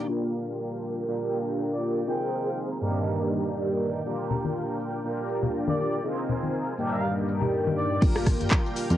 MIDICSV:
0, 0, Header, 1, 6, 480
1, 0, Start_track
1, 0, Tempo, 495868
1, 85, Time_signature, 4, 2, 24, 8
1, 8686, End_track
2, 0, Start_track
2, 0, Title_t, "Trumpet section"
2, 0, Program_c, 0, 61
2, 1661, Note_on_c, 0, 74, 86
2, 1985, Note_off_c, 0, 74, 0
2, 2000, Note_on_c, 0, 79, 85
2, 2483, Note_off_c, 0, 79, 0
2, 5501, Note_on_c, 0, 74, 89
2, 5824, Note_off_c, 0, 74, 0
2, 6697, Note_on_c, 0, 77, 86
2, 6870, Note_off_c, 0, 77, 0
2, 7528, Note_on_c, 0, 74, 86
2, 7767, Note_off_c, 0, 74, 0
2, 8686, End_track
3, 0, Start_track
3, 0, Title_t, "String machine"
3, 0, Program_c, 1, 50
3, 87, Note_on_c, 1, 70, 75
3, 90, Note_on_c, 1, 65, 78
3, 90, Note_on_c, 1, 79, 93
3, 1038, Note_off_c, 1, 65, 0
3, 1047, Note_on_c, 1, 62, 78
3, 1988, Note_off_c, 1, 79, 0
3, 1997, Note_off_c, 1, 62, 0
3, 2006, Note_on_c, 1, 77, 83
3, 2007, Note_on_c, 1, 60, 75
3, 2008, Note_on_c, 1, 68, 70
3, 2700, Note_off_c, 1, 70, 0
3, 2718, Note_off_c, 1, 77, 0
3, 2719, Note_off_c, 1, 60, 0
3, 2719, Note_off_c, 1, 68, 0
3, 2728, Note_on_c, 1, 55, 80
3, 2729, Note_on_c, 1, 74, 70
3, 2732, Note_on_c, 1, 51, 70
3, 2733, Note_on_c, 1, 79, 90
3, 3914, Note_off_c, 1, 55, 0
3, 3915, Note_off_c, 1, 74, 0
3, 3917, Note_off_c, 1, 51, 0
3, 3928, Note_on_c, 1, 70, 75
3, 3929, Note_on_c, 1, 65, 80
3, 4877, Note_off_c, 1, 65, 0
3, 4886, Note_on_c, 1, 62, 78
3, 5818, Note_off_c, 1, 79, 0
3, 5836, Note_off_c, 1, 62, 0
3, 5843, Note_on_c, 1, 72, 69
3, 5843, Note_on_c, 1, 80, 84
3, 5844, Note_on_c, 1, 65, 76
3, 6540, Note_off_c, 1, 70, 0
3, 6557, Note_off_c, 1, 65, 0
3, 6557, Note_off_c, 1, 72, 0
3, 6557, Note_off_c, 1, 80, 0
3, 6565, Note_on_c, 1, 55, 78
3, 6566, Note_on_c, 1, 51, 72
3, 6566, Note_on_c, 1, 74, 71
3, 6566, Note_on_c, 1, 79, 85
3, 7753, Note_off_c, 1, 51, 0
3, 7753, Note_off_c, 1, 55, 0
3, 7754, Note_off_c, 1, 74, 0
3, 7754, Note_off_c, 1, 79, 0
3, 7766, Note_on_c, 1, 70, 80
3, 7769, Note_on_c, 1, 65, 81
3, 7769, Note_on_c, 1, 79, 93
3, 8686, Note_off_c, 1, 65, 0
3, 8686, Note_off_c, 1, 70, 0
3, 8686, Note_off_c, 1, 79, 0
3, 8686, End_track
4, 0, Start_track
4, 0, Title_t, "Analog polysynth"
4, 0, Program_c, 2, 90
4, 74, Note_on_c, 2, 58, 78
4, 79, Note_on_c, 2, 62, 70
4, 83, Note_on_c, 2, 65, 71
4, 87, Note_on_c, 2, 67, 71
4, 91, Note_on_c, 2, 70, 88
4, 998, Note_off_c, 2, 58, 0
4, 1000, Note_off_c, 2, 62, 0
4, 1002, Note_off_c, 2, 65, 0
4, 1004, Note_off_c, 2, 67, 0
4, 1006, Note_off_c, 2, 70, 0
4, 1038, Note_on_c, 2, 58, 78
4, 1042, Note_on_c, 2, 62, 70
4, 1045, Note_on_c, 2, 65, 71
4, 1049, Note_on_c, 2, 67, 70
4, 1053, Note_on_c, 2, 70, 84
4, 1960, Note_off_c, 2, 58, 0
4, 1961, Note_off_c, 2, 62, 0
4, 1963, Note_off_c, 2, 65, 0
4, 1965, Note_off_c, 2, 67, 0
4, 1967, Note_off_c, 2, 70, 0
4, 1996, Note_on_c, 2, 60, 79
4, 1999, Note_on_c, 2, 63, 72
4, 2003, Note_on_c, 2, 65, 69
4, 2007, Note_on_c, 2, 68, 71
4, 2011, Note_on_c, 2, 70, 85
4, 2679, Note_off_c, 2, 60, 0
4, 2680, Note_off_c, 2, 63, 0
4, 2682, Note_off_c, 2, 65, 0
4, 2684, Note_off_c, 2, 68, 0
4, 2686, Note_off_c, 2, 70, 0
4, 2715, Note_on_c, 2, 43, 87
4, 2717, Note_on_c, 2, 58, 79
4, 2719, Note_on_c, 2, 62, 81
4, 2723, Note_on_c, 2, 63, 79
4, 2727, Note_on_c, 2, 67, 79
4, 2730, Note_on_c, 2, 70, 97
4, 3878, Note_off_c, 2, 43, 0
4, 3879, Note_off_c, 2, 58, 0
4, 3880, Note_off_c, 2, 62, 0
4, 3882, Note_off_c, 2, 63, 0
4, 3884, Note_off_c, 2, 67, 0
4, 3886, Note_off_c, 2, 70, 0
4, 3911, Note_on_c, 2, 58, 78
4, 3915, Note_on_c, 2, 62, 72
4, 3919, Note_on_c, 2, 65, 72
4, 3925, Note_on_c, 2, 67, 71
4, 3927, Note_on_c, 2, 70, 86
4, 4836, Note_off_c, 2, 58, 0
4, 4838, Note_off_c, 2, 62, 0
4, 4840, Note_off_c, 2, 65, 0
4, 4843, Note_off_c, 2, 67, 0
4, 4844, Note_off_c, 2, 70, 0
4, 4871, Note_on_c, 2, 58, 77
4, 4877, Note_on_c, 2, 62, 69
4, 4879, Note_on_c, 2, 65, 68
4, 4883, Note_on_c, 2, 67, 71
4, 4886, Note_on_c, 2, 70, 82
4, 5796, Note_off_c, 2, 58, 0
4, 5799, Note_off_c, 2, 62, 0
4, 5800, Note_off_c, 2, 65, 0
4, 5802, Note_off_c, 2, 67, 0
4, 5804, Note_off_c, 2, 70, 0
4, 5833, Note_on_c, 2, 60, 80
4, 5836, Note_on_c, 2, 63, 71
4, 5841, Note_on_c, 2, 65, 72
4, 5846, Note_on_c, 2, 68, 72
4, 5849, Note_on_c, 2, 70, 87
4, 6517, Note_off_c, 2, 60, 0
4, 6519, Note_off_c, 2, 63, 0
4, 6521, Note_off_c, 2, 65, 0
4, 6523, Note_off_c, 2, 68, 0
4, 6525, Note_off_c, 2, 70, 0
4, 6554, Note_on_c, 2, 43, 90
4, 6556, Note_on_c, 2, 58, 82
4, 6560, Note_on_c, 2, 62, 81
4, 6563, Note_on_c, 2, 63, 80
4, 6565, Note_on_c, 2, 67, 82
4, 6569, Note_on_c, 2, 70, 96
4, 7718, Note_off_c, 2, 43, 0
4, 7719, Note_off_c, 2, 58, 0
4, 7721, Note_off_c, 2, 62, 0
4, 7722, Note_off_c, 2, 63, 0
4, 7723, Note_off_c, 2, 67, 0
4, 7725, Note_off_c, 2, 70, 0
4, 7757, Note_on_c, 2, 58, 80
4, 7761, Note_on_c, 2, 62, 75
4, 7763, Note_on_c, 2, 65, 74
4, 7769, Note_on_c, 2, 67, 76
4, 7774, Note_on_c, 2, 70, 90
4, 8679, Note_off_c, 2, 58, 0
4, 8681, Note_off_c, 2, 62, 0
4, 8682, Note_off_c, 2, 65, 0
4, 8685, Note_off_c, 2, 67, 0
4, 8686, Note_off_c, 2, 70, 0
4, 8686, End_track
5, 0, Start_track
5, 0, Title_t, "Analog synth bass"
5, 0, Program_c, 3, 38
5, 7765, Note_on_c, 3, 31, 99
5, 8138, Note_on_c, 3, 43, 84
5, 8152, Note_off_c, 3, 31, 0
5, 8221, Note_off_c, 3, 43, 0
5, 8621, Note_on_c, 3, 41, 83
5, 8686, Note_off_c, 3, 41, 0
5, 8686, End_track
6, 0, Start_track
6, 0, Title_t, "Drums"
6, 3925, Note_on_c, 9, 82, 43
6, 4022, Note_off_c, 9, 82, 0
6, 4059, Note_on_c, 9, 82, 34
6, 4156, Note_off_c, 9, 82, 0
6, 4162, Note_on_c, 9, 82, 85
6, 4167, Note_on_c, 9, 64, 80
6, 4259, Note_off_c, 9, 82, 0
6, 4264, Note_off_c, 9, 64, 0
6, 4304, Note_on_c, 9, 63, 65
6, 4309, Note_on_c, 9, 82, 35
6, 4401, Note_off_c, 9, 63, 0
6, 4405, Note_off_c, 9, 82, 0
6, 4406, Note_on_c, 9, 82, 41
6, 4503, Note_off_c, 9, 82, 0
6, 4547, Note_on_c, 9, 82, 32
6, 4637, Note_off_c, 9, 82, 0
6, 4637, Note_on_c, 9, 82, 74
6, 4733, Note_off_c, 9, 82, 0
6, 4782, Note_on_c, 9, 82, 33
6, 4878, Note_off_c, 9, 82, 0
6, 4887, Note_on_c, 9, 82, 44
6, 4984, Note_off_c, 9, 82, 0
6, 5119, Note_on_c, 9, 82, 92
6, 5215, Note_off_c, 9, 82, 0
6, 5254, Note_on_c, 9, 64, 86
6, 5258, Note_on_c, 9, 82, 38
6, 5350, Note_off_c, 9, 64, 0
6, 5355, Note_off_c, 9, 82, 0
6, 5360, Note_on_c, 9, 82, 44
6, 5457, Note_off_c, 9, 82, 0
6, 5494, Note_on_c, 9, 63, 96
6, 5591, Note_off_c, 9, 63, 0
6, 5608, Note_on_c, 9, 82, 84
6, 5705, Note_off_c, 9, 82, 0
6, 5731, Note_on_c, 9, 82, 36
6, 5828, Note_off_c, 9, 82, 0
6, 5842, Note_on_c, 9, 82, 44
6, 5938, Note_off_c, 9, 82, 0
6, 5979, Note_on_c, 9, 82, 35
6, 6076, Note_off_c, 9, 82, 0
6, 6091, Note_on_c, 9, 64, 79
6, 6091, Note_on_c, 9, 82, 81
6, 6188, Note_off_c, 9, 64, 0
6, 6188, Note_off_c, 9, 82, 0
6, 6217, Note_on_c, 9, 82, 36
6, 6227, Note_on_c, 9, 63, 55
6, 6314, Note_off_c, 9, 82, 0
6, 6323, Note_off_c, 9, 63, 0
6, 6329, Note_on_c, 9, 82, 41
6, 6426, Note_off_c, 9, 82, 0
6, 6460, Note_on_c, 9, 82, 31
6, 6557, Note_off_c, 9, 82, 0
6, 6566, Note_on_c, 9, 82, 85
6, 6663, Note_off_c, 9, 82, 0
6, 6700, Note_on_c, 9, 82, 36
6, 6797, Note_off_c, 9, 82, 0
6, 6809, Note_on_c, 9, 82, 43
6, 6906, Note_off_c, 9, 82, 0
6, 6947, Note_on_c, 9, 82, 29
6, 7044, Note_off_c, 9, 82, 0
6, 7047, Note_on_c, 9, 82, 86
6, 7144, Note_off_c, 9, 82, 0
6, 7177, Note_on_c, 9, 82, 37
6, 7179, Note_on_c, 9, 64, 80
6, 7274, Note_off_c, 9, 82, 0
6, 7275, Note_off_c, 9, 64, 0
6, 7288, Note_on_c, 9, 82, 45
6, 7384, Note_off_c, 9, 82, 0
6, 7425, Note_on_c, 9, 63, 84
6, 7522, Note_off_c, 9, 63, 0
6, 7531, Note_on_c, 9, 82, 85
6, 7627, Note_off_c, 9, 82, 0
6, 7660, Note_on_c, 9, 82, 39
6, 7757, Note_off_c, 9, 82, 0
6, 7764, Note_on_c, 9, 36, 124
6, 7764, Note_on_c, 9, 42, 70
6, 7764, Note_on_c, 9, 49, 108
6, 7771, Note_on_c, 9, 82, 58
6, 7861, Note_off_c, 9, 36, 0
6, 7861, Note_off_c, 9, 42, 0
6, 7861, Note_off_c, 9, 49, 0
6, 7868, Note_off_c, 9, 82, 0
6, 7896, Note_on_c, 9, 37, 77
6, 7896, Note_on_c, 9, 82, 36
6, 7993, Note_off_c, 9, 37, 0
6, 7993, Note_off_c, 9, 82, 0
6, 8000, Note_on_c, 9, 64, 80
6, 8001, Note_on_c, 9, 37, 60
6, 8001, Note_on_c, 9, 46, 101
6, 8003, Note_on_c, 9, 82, 95
6, 8004, Note_on_c, 9, 36, 62
6, 8097, Note_off_c, 9, 64, 0
6, 8098, Note_off_c, 9, 37, 0
6, 8098, Note_off_c, 9, 46, 0
6, 8099, Note_off_c, 9, 82, 0
6, 8101, Note_off_c, 9, 36, 0
6, 8134, Note_on_c, 9, 63, 59
6, 8139, Note_on_c, 9, 42, 58
6, 8142, Note_on_c, 9, 82, 45
6, 8231, Note_off_c, 9, 63, 0
6, 8236, Note_off_c, 9, 42, 0
6, 8238, Note_on_c, 9, 39, 126
6, 8239, Note_off_c, 9, 82, 0
6, 8243, Note_on_c, 9, 42, 71
6, 8244, Note_on_c, 9, 36, 117
6, 8246, Note_on_c, 9, 82, 54
6, 8334, Note_off_c, 9, 39, 0
6, 8340, Note_off_c, 9, 42, 0
6, 8341, Note_off_c, 9, 36, 0
6, 8343, Note_off_c, 9, 82, 0
6, 8383, Note_on_c, 9, 82, 40
6, 8479, Note_off_c, 9, 82, 0
6, 8483, Note_on_c, 9, 46, 90
6, 8485, Note_on_c, 9, 82, 104
6, 8580, Note_off_c, 9, 46, 0
6, 8582, Note_off_c, 9, 82, 0
6, 8620, Note_on_c, 9, 42, 54
6, 8620, Note_on_c, 9, 82, 43
6, 8686, Note_off_c, 9, 42, 0
6, 8686, Note_off_c, 9, 82, 0
6, 8686, End_track
0, 0, End_of_file